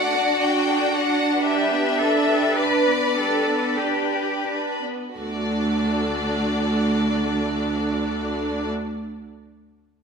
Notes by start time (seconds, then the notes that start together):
Already playing: A3 D4 F#4 D5 F#5
0.14 D4
0.40 F#4 G5
0.63 A4
0.89 F#4
0.93 F#5
1.15 D4
1.43 G3 G4 B4 E5
1.70 B3
1.99 D4 A4
2.27 G4
2.57 D4 B4 D5
2.85 B3
3.15 G3 A4
3.44 B3
3.77 D4 G4
4.11 G4
4.46 D4
4.82 B3
5.16 D2 A3 D4 F#4 A4 D5